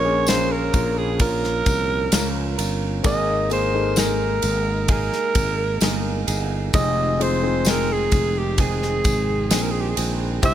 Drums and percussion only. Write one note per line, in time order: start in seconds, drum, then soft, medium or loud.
0.27 snare loud
0.27 ride medium
0.27 tambourine medium
0.73 kick medium
0.73 ride medium
0.73 tambourine soft
1.20 kick loud
1.20 ride medium
1.20 tambourine soft
1.44 snare soft
1.66 kick medium
1.66 ride medium
1.66 tambourine medium
2.12 snare loud
2.12 ride medium
2.12 tambourine medium
2.59 ride medium
2.59 tambourine soft
3.04 kick loud
3.04 ride medium
3.04 tambourine soft
3.50 ride medium
3.50 tambourine soft
3.96 snare loud
3.96 ride medium
3.96 tambourine medium
4.42 ride medium
4.42 tambourine soft
4.88 kick medium
4.88 ride medium
5.13 snare soft
5.35 kick medium
5.35 ride medium
5.35 tambourine soft
5.80 snare loud
5.80 ride medium
5.80 tambourine medium
6.28 ride medium
6.28 tambourine soft
6.73 kick loud
6.73 ride medium
6.73 tambourine soft
7.21 ride medium
7.65 snare loud
7.65 ride medium
7.65 tambourine medium
8.11 kick medium
8.11 ride medium
8.11 tambourine soft
8.58 kick medium
8.58 ride medium
8.58 tambourine soft
8.82 snare soft
9.04 kick medium
9.04 ride medium
9.04 tambourine medium
9.50 snare loud
9.50 ride medium
9.50 tambourine medium
9.97 ride medium
9.97 tambourine soft
10.42 kick loud
10.42 ride medium
10.42 tambourine soft